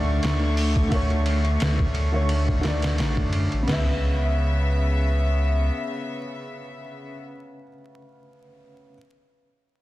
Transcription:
Already playing: sub bass D2, upright piano D3 A3 C#5 D5, string section D3 A3 C#6
0.23 sub bass D2, snare, ride
0.57 open hi-hat
0.76 kick
0.88 sub bass D2, upright piano D3 A3, kick, ride
0.95 upright piano C#5
1.10 ride
1.26 ride
1.45 ride
1.60 sub bass D2, snare, ride
1.79 kick
1.95 ride
2.12 upright piano D3 A3 C#5
2.29 ride
2.48 kick
2.61 upright piano D3 A3, ride
2.65 sub bass D2, upright piano D5, snare
2.82 snare, ride
2.98 sub bass A1, snare, ride
3.17 sub bass F#2, kick
3.33 ride
3.52 sub bass A1, ride
3.63 upright piano C#3
3.68 sub bass C#2, string section C#3 B3 E5, upright piano B3, snare, floor tom, crash
3.73 upright piano E5

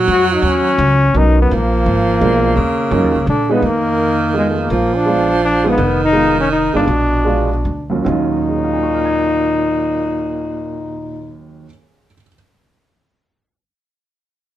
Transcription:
Already playing: tenor saxophone F#3
0.08 upright bass F2, trombone F#4
0.35 trombone D#4
0.42 upright bass D#2, trombone C#4
0.78 upright bass C#2
1.14 upright bass B1, grand piano F#3 B3 C#4 D#4 A#4, trombone D#4
1.42 trombone B3
1.51 upright bass A#1, tenor saxophone F3, trombone A#3
1.86 upright bass G#1
2.21 upright bass B1, grand piano B2 G#3 D4 F4 A#4
2.55 upright bass D#2, tenor saxophone C#3
2.91 upright bass F#2, grand piano F#3 C#4 D#4 F4 A#4
3.03 upright bass D#2
3.16 upright bass C#2
3.27 upright bass A#2, tenor saxophone D3, trombone D4
3.49 grand piano G#3 B3 D#4 F4 B4, trombone B3
3.62 upright bass F2, tenor saxophone D#3, trombone A#3
4.34 grand piano G#3 B3 D#4 F4
4.38 trombone G#3
4.50 trombone A3
4.60 trombone A#3
4.70 upright bass A#1, tenor saxophone F3
4.96 trombone D4
5.06 grand piano G#3 B3 D4 F4
5.44 trombone D4
5.64 grand piano G#3 B3 D#4 F4
5.68 trombone B3
5.77 upright bass F1, tenor saxophone D#3
6.04 trombone D#4
6.13 grand piano G#3 B3 D#4 F4
6.40 trombone C#4
6.52 trombone D#4
6.73 upright bass G#1, grand piano G#3 B3 D4 F4, trombone D4
6.87 upright bass A#1, tenor saxophone B2
7.25 grand piano G#3 B3 D4 F4
7.65 upright bass D2
7.90 grand piano D#2 F#3 A#3 C#4 F4
8.04 grand piano D#2 D#3 F#3 C#4 F4, upright bass D#2, tenor saxophone A#2
8.09 trombone D#4
8.49 grand piano G#4
8.56 grand piano C#5
8.64 grand piano F5
8.73 grand piano G#5
8.83 grand piano C#6
8.94 grand piano F6
9.05 grand piano G#6

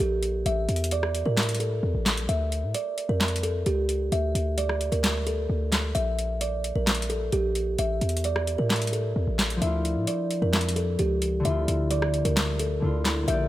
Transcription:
0.00 808-style bass A#1, kalimba G4, closed hi-hat
0.23 closed hi-hat
0.46 808-style bass A1, kalimba E5, closed hi-hat
0.69 808-style bass E2, closed hi-hat
0.76 closed hi-hat
0.84 closed hi-hat
0.91 kalimba D5, closed hi-hat
1.03 cross-stick
1.15 closed hi-hat
1.26 808-style bass A2, kalimba A#4
1.37 snare, clap, closed hi-hat
1.43 closed hi-hat
1.49 closed hi-hat
1.54 closed hi-hat
1.60 kalimba A4, closed hi-hat
1.83 808-style bass E2
1.95 808-style bass A1
2.06 snare, clap, closed hi-hat
2.17 808-style bass A#1, closed hi-hat
2.29 808-style bass D2, kalimba E5, closed hi-hat
2.52 closed hi-hat
2.63 808-style bass A2
2.74 kalimba D5, closed hi-hat
2.98 closed hi-hat
3.09 808-style bass F2, kalimba A#4
3.21 snare, clap, closed hi-hat
3.28 closed hi-hat
3.36 closed hi-hat
3.43 kalimba A4, closed hi-hat
3.66 808-style bass C#2, kalimba G4, closed hi-hat
3.89 closed hi-hat
4.12 808-style bass D2, kalimba E5, closed hi-hat
4.35 808-style bass D2, closed hi-hat
4.58 kalimba D5, closed hi-hat
4.69 cross-stick
4.81 closed hi-hat
4.92 808-style bass D2, kalimba A#4, closed hi-hat
5.04 snare, clap, closed hi-hat
5.27 kalimba A4, closed hi-hat
5.49 808-style bass D2
5.72 snare, clap, closed hi-hat
5.95 808-style bass A#1, kalimba E5, closed hi-hat
6.19 closed hi-hat
6.41 kalimba D5, closed hi-hat
6.64 closed hi-hat
6.75 808-style bass A#1, kalimba A#4
6.87 snare, clap, closed hi-hat
6.95 closed hi-hat
7.02 closed hi-hat
7.10 kalimba A4, closed hi-hat
7.32 808-style bass A#1, kalimba G4, closed hi-hat
7.55 closed hi-hat
7.79 808-style bass A1, kalimba E5, closed hi-hat
8.01 808-style bass E2, closed hi-hat
8.09 closed hi-hat
8.17 closed hi-hat
8.24 kalimba D5, closed hi-hat
8.36 cross-stick
8.47 closed hi-hat
8.58 808-style bass A2, kalimba A#4
8.70 snare, clap, closed hi-hat
8.76 closed hi-hat
8.82 closed hi-hat
8.87 closed hi-hat
8.93 kalimba A4, closed hi-hat
9.16 808-style bass E2
9.27 808-style bass A1
9.39 snare, clap, closed hi-hat
9.50 808-style bass A#1, closed hi-hat
9.57 harp F3 D4
9.62 808-style bass D2, harp E4, kalimba E5, closed hi-hat
9.67 harp F4
9.85 closed hi-hat
9.96 808-style bass A2
10.07 kalimba D5, closed hi-hat
10.31 closed hi-hat
10.42 808-style bass F2, kalimba A#4
10.53 snare, clap, closed hi-hat
10.61 closed hi-hat
10.69 closed hi-hat
10.76 kalimba A4, closed hi-hat
10.99 808-style bass C#2, kalimba G4, closed hi-hat
11.22 closed hi-hat
11.40 harp D3 D4
11.45 808-style bass D2, harp E4, kalimba E5, closed hi-hat
11.50 harp F4
11.68 808-style bass D2, closed hi-hat
11.91 kalimba D5, closed hi-hat
12.02 cross-stick
12.14 closed hi-hat
12.25 808-style bass D2, kalimba A#4, closed hi-hat
12.37 snare, clap, closed hi-hat
12.59 kalimba A4, closed hi-hat
12.80 808-style bass D2, harp D3 D4 E4
12.85 harp F4
13.05 snare, clap, closed hi-hat
13.23 harp A#3 F4
13.28 808-style bass A#1, harp G4, kalimba E5, closed hi-hat
13.33 harp D5

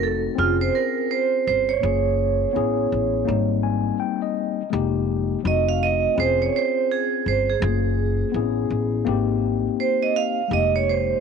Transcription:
Already playing: upright bass F1, tine electric piano A3 C4 D#4 F#4
0.03 vibraphone A4
0.35 upright bass F1, tine electric piano C4 C#4 F4
0.39 vibraphone F4, tine electric piano G#4
0.61 vibraphone C5
0.75 vibraphone A#4
1.11 vibraphone C5
1.47 upright bass G1, vibraphone C5
1.69 vibraphone C#5
1.80 upright bass F#1, tine electric piano A#3 C#4 F4
1.85 tine electric piano G#4
2.53 upright bass A1, tine electric piano B3 C#4 E4 G#4
2.92 upright bass A1
3.25 upright bass G#1, tine electric piano G3 A#3 C4 D#4
3.63 tine electric piano G#5
4.00 tine electric piano G5
4.22 tine electric piano D#5
4.70 upright bass F1, tine electric piano G#3 A#3 D#4 G4
5.42 upright bass F1, tine electric piano F#3 C4 D#4 F#4
5.47 tine electric piano A3, vibraphone D#5
5.69 vibraphone F5
5.83 vibraphone D#5
6.15 upright bass F1, tine electric piano C4 C#4 F4 G#4
6.20 vibraphone C5
6.42 vibraphone C#5
6.56 vibraphone C5
6.92 vibraphone G#4
7.26 upright bass G1, vibraphone C5
7.50 vibraphone G#4
7.60 upright bass F#1, tine electric piano A3 C#4 F4 G#4
7.67 tine electric piano A#3
8.32 upright bass A1, tine electric piano B3 C4 E4
8.36 tine electric piano C#4 G#4
8.70 upright bass A1
9.05 upright bass G#1, tine electric piano A#3 C4 D#4 G4
9.80 vibraphone C5
10.03 vibraphone D#5
10.16 vibraphone F5
10.48 upright bass F1, tine electric piano G#3 A#3 D#4 G4
10.53 vibraphone D#5
10.76 vibraphone C#5
10.90 vibraphone C5

